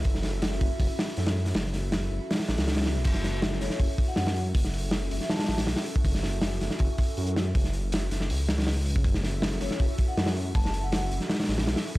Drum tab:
CC |--------------------------------|--------------------------------|x-------------------------------|--------------------------------|
HH |o---o---o---o---o---o---o-o---o-|o---o---o-------ooo-o-o-ooooo---|o---o---o---o---o---o---o-o-o---|o---o---o---o---ooooo-o-o-o-o---|
SD |--o-o---o-o---------o-o-o-o-o-o-|o-o-o---o-------ooo-o-o-ooooo-o-|--o-o---o-o-o-o---------o-o-----|--o-----o-----o-ooooo-o-o-o-----|
BD |o-----------o---o---------------|--------------------------------|o---------------o---o-----------|o-----------------------------o-|

CC |--------------------------------|--------------------------------|--------------------------------|--------------------------------|
HH |o---o---o---o---o---o---o-x-o---|o---o---o---o---o---o-ooo---o---|o---o---o---o---o---o---o-o-o---|o---o---o---o---ooooo-o-o-o-o---|
SD |--o-o---o-o-o-o-------------o---|--o-----o---o-o-----o-ooo-o-----|--o-o---o-o-o-o---------o-o-----|--o-----o-----o-ooooo-o-o-o-----|
BD |o---------------o---o-----------|o-----------------------------o-|o---------------o---o-----------|o-------------------------------|